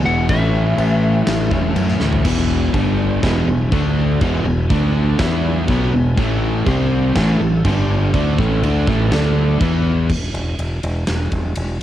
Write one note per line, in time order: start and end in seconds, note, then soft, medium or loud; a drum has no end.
0.00 0.28 E2 medium
0.00 0.27 B2 medium
0.00 0.28 E3 medium
0.00 0.29 E3 loud
0.00 0.28 G#3 loud
0.00 0.28 B3 medium
0.00 0.29 B3 loud
0.00 0.29 E4 medium
0.00 0.28 F#4 medium
0.05 0.27 E1 medium
0.05 0.29 E2 medium
0.05 0.29 B2 medium
0.05 0.28 E3 medium
0.05 0.28 F#5 medium
0.28 0.73 A1 medium
0.28 1.50 A2 medium
0.28 1.50 E3 medium
0.28 1.50 A3 medium
0.28 2.24 A3 medium
0.28 1.50 C#4 medium
0.28 2.23 E4 medium
0.28 1.49 E4 medium
0.28 2.23 B4 medium
0.28 1.72 E5 medium
0.28 kick loud
0.28 crash medium
0.78 1.22 A1 medium
0.78 crash medium
1.27 1.49 A1 medium
1.27 snare loud
1.27 crash medium
1.50 1.73 E1 medium
1.50 1.74 A2 medium
1.50 1.75 E3 medium
1.50 1.75 A3 medium
1.50 1.75 C#4 medium
1.50 1.74 E4 medium
1.50 kick medium
1.75 1.98 F#2 medium
1.75 2.24 A2 medium
1.75 2.24 E3 medium
1.75 2.25 A3 medium
1.75 2.25 C#4 medium
1.75 2.25 E4 medium
1.75 crash medium
1.88 snare soft
2.00 2.22 D2 medium
2.00 2.25 A2 medium
2.00 2.24 E3 medium
2.00 2.24 A3 medium
2.00 snare medium
2.13 floor tom medium
2.25 2.71 E1 medium
2.25 2.73 E2 medium
2.25 2.74 B2 medium
2.25 2.73 E3 loud
2.25 2.74 E4 medium
2.25 2.74 B4 medium
2.25 2.74 G#5 medium
2.25 kick loud
2.25 crash loud
2.25 crash medium
2.37 snare soft
2.73 3.20 G1 medium
2.73 3.22 G2 medium
2.73 3.22 D3 loud
2.73 3.22 G3 loud
2.73 3.24 D4 medium
2.73 3.24 G4 medium
2.73 3.24 G5 medium
2.73 kick medium
2.73 crash medium
3.22 3.46 E1 medium
3.22 3.47 E2 loud
3.22 3.47 B2 loud
3.22 3.47 E3 loud
3.22 3.71 E4 medium
3.22 3.72 B4 medium
3.22 3.71 G#5 medium
3.22 kick loud
3.22 snare loud
3.22 crash medium
3.47 3.70 E1 medium
3.47 3.68 E2 medium
3.47 3.68 B2 medium
3.71 4.18 D2 medium
3.71 4.21 D3 loud
3.71 4.21 A3 medium
3.71 4.21 D4 medium
3.71 4.21 D4 loud
3.71 4.21 A4 medium
3.71 4.20 A5 medium
3.71 kick loud
3.71 crash medium
4.21 4.44 E1 loud
4.21 4.44 E2 medium
4.21 4.45 B2 medium
4.21 4.46 E3 loud
4.21 4.70 E4 medium
4.21 4.70 B4 medium
4.21 4.70 G#5 medium
4.21 kick loud
4.21 crash medium
4.45 4.68 E1 medium
4.45 4.65 E2 medium
4.45 4.66 B2 medium
4.70 5.16 D2 medium
4.70 5.19 D3 loud
4.70 5.19 A3 loud
4.70 5.19 D4 loud
4.70 5.20 D4 medium
4.70 5.20 A4 medium
4.70 5.20 A5 medium
4.70 kick loud
4.70 crash medium
5.18 5.65 E2 loud
5.18 5.68 E3 loud
5.18 5.68 B3 loud
5.18 6.64 E4 medium
5.18 5.68 E4 loud
5.18 6.16 B4 medium
5.18 6.16 G#5 medium
5.18 kick loud
5.18 snare loud
5.18 crash medium
5.68 5.91 B1 loud
5.68 5.92 B2 loud
5.68 5.92 F#3 loud
5.68 5.93 B3 loud
5.68 kick loud
5.68 crash medium
5.93 6.16 E1 medium
5.93 6.12 E2 medium
5.93 6.13 B2 medium
6.16 6.63 A1 medium
6.16 6.66 A2 medium
6.16 6.66 E3 medium
6.16 6.66 A3 medium
6.16 6.66 A4 medium
6.16 6.65 A5 medium
6.16 kick loud
6.16 crash medium
6.65 7.12 C2 medium
6.65 7.15 C3 loud
6.65 7.15 G3 loud
6.65 7.15 C4 loud
6.65 7.14 G4 medium
6.65 7.14 C5 medium
6.65 7.14 C6 medium
6.65 kick loud
6.65 crash medium
7.15 7.38 A1 loud
7.15 7.39 A2 loud
7.15 7.40 E3 loud
7.15 7.40 A3 loud
7.15 7.64 E4 medium
7.15 7.64 A4 medium
7.15 7.64 A5 medium
7.15 kick loud
7.15 snare loud
7.15 crash medium
7.40 7.62 A1 medium
7.40 7.60 A2 medium
7.40 7.60 E3 medium
7.65 8.10 G1 loud
7.65 8.13 G2 medium
7.65 8.13 D3 medium
7.65 8.13 G3 loud
7.65 8.13 D4 medium
7.65 8.14 G4 medium
7.65 8.13 G5 medium
7.65 kick loud
7.65 crash medium
8.14 8.36 D2 medium
8.14 8.37 D3 medium
8.14 8.38 A3 loud
8.14 8.38 D4 loud
8.14 9.11 E4 medium
8.14 9.59 A4 medium
8.14 9.11 A5 medium
8.14 kick loud
8.14 crash medium
8.38 8.61 A1 loud
8.38 8.62 A2 medium
8.38 8.62 E3 medium
8.38 8.62 A3 loud
8.38 kick loud
8.62 8.85 D2 medium
8.62 8.86 D3 loud
8.62 8.87 A3 medium
8.62 8.87 D4 loud
8.62 crash medium
8.87 9.10 A1 loud
8.87 9.11 A2 medium
8.87 9.11 E3 medium
8.87 9.11 A3 loud
8.87 kick loud
9.11 9.57 D2 medium
9.11 9.60 D3 loud
9.11 9.60 A3 loud
9.11 9.60 D4 medium
9.11 9.60 D4 loud
9.11 9.60 A5 medium
9.11 snare loud
9.11 crash medium
9.60 10.11 E2 medium
9.60 10.08 E3 loud
9.60 10.08 B3 loud
9.60 10.09 E4 medium
9.60 10.09 E4 loud
9.60 10.09 B4 medium
9.60 10.09 B5 medium
9.60 kick loud
9.60 crash medium
10.10 10.32 E1 medium
10.10 kick loud
10.10 crash loud
10.33 10.56 E1 medium
10.33 ride medium
10.59 10.81 E1 medium
10.59 ride medium
10.83 11.05 E1 medium
10.83 ride medium
11.07 11.30 E1 medium
11.07 snare loud
11.07 ride loud
11.32 11.54 E1 medium
11.32 kick medium
11.32 ride medium
11.56 11.79 E1 medium
11.56 ride medium